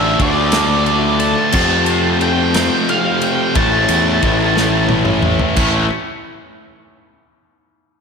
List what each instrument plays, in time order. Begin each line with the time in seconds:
Already playing: picked electric bass A1, distorted electric guitar D3 A3 D4 F4, lead electric guitar E5
0.20 picked electric bass D2, distorted electric guitar D3 A3 D4 F4, lead electric guitar D5, kick, ride
0.52 distorted electric guitar D3 A3 D4 F4, snare, ride
0.86 distorted electric guitar D3 A3 D4 F4, ride
1.20 lead electric guitar A5, ride
1.52 overdriven electric guitar F2 C3, picked electric bass F2, distorted electric guitar F3 A3 C4 F4, kick, crash
1.86 distorted electric guitar F3 A3 C4 F4, ride
2.21 distorted electric guitar F3 A3 C4 F4, lead electric guitar G5, ride
2.54 distorted electric guitar F3 A3 C4 F4, snare, ride
2.89 distorted electric guitar F3 A3 C4 F4, lead electric guitar F5, ride
3.22 lead electric guitar G5, ride
3.55 picked electric bass A1, distorted electric guitar A2 E3 A3 C#4 E4, lead electric guitar A5, kick, ride
3.88 picked electric bass E2, distorted electric guitar A2 E3 A3 C#4 E4, ride
4.21 picked electric bass A1, distorted electric guitar A2 E3 A3 C#4 E4, kick, ride
4.54 distorted electric guitar A2 E3 A3 C#4 E4, snare
4.87 distorted electric guitar A2 E3 A3 C#4 E4, high tom
5.05 mid tom
5.22 mid tom
5.39 floor tom
5.56 picked electric bass A1, distorted electric guitar A2 E3 A3 C#4 E4, kick, crash